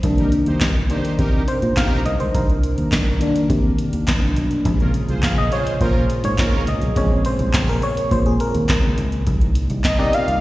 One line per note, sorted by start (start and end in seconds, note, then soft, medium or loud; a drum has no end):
0.03 0.40 C2 loud
0.03 0.42 D#3 medium
0.03 4.61 D#3 medium
0.03 0.42 A#3 medium
0.03 4.61 D4 medium
0.03 0.42 D4 medium
0.03 4.61 A#4 loud
0.03 kick loud
0.03 closed hi-hat medium
0.18 0.30 D#4 medium
0.18 0.30 G4 medium
0.18 0.30 A#4 medium
0.18 closed hi-hat soft
0.32 closed hi-hat medium
0.46 0.59 D#2 loud
0.46 0.59 D#4 medium
0.46 0.59 G4 medium
0.46 0.59 C5 medium
0.46 closed hi-hat soft
0.61 0.85 C2 loud
0.61 0.73 G4 medium
0.61 0.73 A#4 medium
0.61 0.73 D#5 medium
0.61 kick loud
0.61 snare loud
0.61 clap medium
0.61 closed hi-hat loud
0.90 1.16 D#3 medium
0.90 1.16 A#3 soft
0.90 1.17 D4 medium
0.90 1.14 D#4 medium
0.90 1.14 G4 loud
0.90 1.13 C5 loud
0.90 closed hi-hat medium
1.05 closed hi-hat medium
1.19 1.43 C3 loud
1.19 1.42 D#4 loud
1.19 1.42 G4 loud
1.19 1.43 A#4 loud
1.19 kick loud
1.19 closed hi-hat medium
1.48 1.78 C5 loud
1.48 closed hi-hat medium
1.62 1.75 A#2 loud
1.62 closed hi-hat medium
1.76 1.89 C3 medium
1.76 2.00 D#4 loud
1.76 2.00 G4 loud
1.76 2.00 A#4 loud
1.76 2.07 F5 loud
1.76 kick loud
1.76 snare loud
1.76 clap loud
1.76 closed hi-hat loud
2.06 2.18 C2 medium
2.06 2.19 D#5 medium
2.06 closed hi-hat medium
2.20 2.32 C#2 medium
2.20 2.35 C5 medium
2.20 closed hi-hat medium
2.35 2.71 C2 loud
2.35 3.17 A#4 medium
2.35 kick loud
2.35 closed hi-hat medium
2.50 closed hi-hat soft
2.63 closed hi-hat medium
2.78 2.90 D#2 medium
2.78 closed hi-hat soft
2.92 3.17 C2 medium
2.92 kick loud
2.92 snare loud
2.92 clap loud
2.92 closed hi-hat loud
3.21 4.61 D#3 medium
3.21 4.61 A#3 medium
3.21 4.62 D4 medium
3.21 closed hi-hat medium
3.36 closed hi-hat medium
3.50 3.74 C3 loud
3.50 kick loud
3.50 closed hi-hat medium
3.78 closed hi-hat medium
3.93 4.05 D#2 medium
3.93 closed hi-hat medium
4.07 4.32 C2 medium
4.07 kick loud
4.07 snare loud
4.07 clap loud
4.07 closed hi-hat loud
4.36 4.61 B1 medium
4.36 closed hi-hat medium
4.51 closed hi-hat medium
4.65 5.02 A#1 loud
4.65 9.23 A#2 medium
4.65 6.93 C3 medium
4.65 6.92 C#3 medium
4.65 6.92 G#3 medium
4.65 9.23 A#3 medium
4.65 9.23 G#4 medium
4.65 kick loud
4.65 closed hi-hat loud
4.80 4.92 C#4 medium
4.80 4.91 F4 medium
4.80 4.91 A#4 medium
4.80 closed hi-hat soft
4.94 closed hi-hat medium
5.09 5.21 C2 medium
5.09 5.20 F4 medium
5.09 5.20 G#4 medium
5.09 5.20 C5 medium
5.09 closed hi-hat soft
5.23 5.47 A#1 loud
5.23 5.35 F4 medium
5.23 5.34 G#4 medium
5.23 5.35 C#5 medium
5.23 5.38 F5 medium
5.23 kick loud
5.23 snare loud
5.23 clap loud
5.23 closed hi-hat loud
5.38 5.51 D#5 loud
5.52 5.75 F4 loud
5.52 5.75 G#4 medium
5.52 5.75 C5 loud
5.52 5.65 C#5 loud
5.52 closed hi-hat medium
5.67 closed hi-hat medium
5.81 6.05 A#2 loud
5.81 6.04 C#4 loud
5.81 6.04 F4 loud
5.81 6.04 A#4 loud
5.81 6.26 C5 medium
5.81 kick loud
5.81 closed hi-hat medium
6.10 closed hi-hat medium
6.24 6.36 G#2 medium
6.24 6.69 C#5 loud
6.24 closed hi-hat medium
6.38 6.51 A#2 loud
6.38 6.62 C#4 loud
6.38 6.62 F4 loud
6.38 6.62 A#4 loud
6.38 kick loud
6.38 snare loud
6.38 clap loud
6.38 closed hi-hat loud
6.67 6.79 C#2 loud
6.67 6.97 D#5 medium
6.67 closed hi-hat medium
6.82 6.94 B1 medium
6.82 closed hi-hat medium
6.96 7.32 A#1 loud
6.96 9.23 C#3 medium
6.96 9.23 G#3 medium
6.96 9.23 C4 medium
6.96 7.26 C#5 loud
6.96 kick loud
6.96 closed hi-hat medium
7.25 7.66 C5 loud
7.25 closed hi-hat medium
7.39 7.51 C2 loud
7.39 closed hi-hat soft
7.53 7.78 A#1 loud
7.53 kick loud
7.53 snare loud
7.53 clap loud
7.53 closed hi-hat loud
7.68 7.84 A#4 medium
7.68 closed hi-hat soft
7.82 8.13 C#5 loud
7.82 closed hi-hat medium
7.97 closed hi-hat medium
8.11 8.36 A#2 medium
8.11 8.18 C5 medium
8.11 kick loud
8.11 closed hi-hat medium
8.26 8.33 G#4 medium
8.26 closed hi-hat soft
8.40 8.94 A#4 medium
8.40 closed hi-hat medium
8.55 8.67 D#2 medium
8.55 closed hi-hat medium
8.69 8.93 C#2 medium
8.69 kick loud
8.69 snare loud
8.69 clap loud
8.69 closed hi-hat loud
8.98 9.22 C#2 medium
8.98 closed hi-hat medium
9.12 closed hi-hat medium
9.27 9.63 C2 loud
9.27 10.41 D#3 loud
9.27 10.41 A#3 medium
9.27 10.41 D#4 loud
9.27 kick loud
9.27 closed hi-hat medium
9.41 closed hi-hat soft
9.55 closed hi-hat medium
9.70 9.82 C2 loud
9.70 closed hi-hat soft
9.84 10.15 D#5 loud
9.84 muted fingered electric bass stroke medium
9.84 kick loud
9.84 snare loud
9.84 clap medium
9.84 closed hi-hat medium
9.99 10.11 C3 medium
9.99 10.24 D#4 medium
9.99 10.25 G4 medium
9.99 10.25 A#4 medium
9.99 10.25 D5 loud
10.13 10.41 F5 loud
10.13 closed hi-hat medium
10.28 10.40 C2 medium
10.28 closed hi-hat medium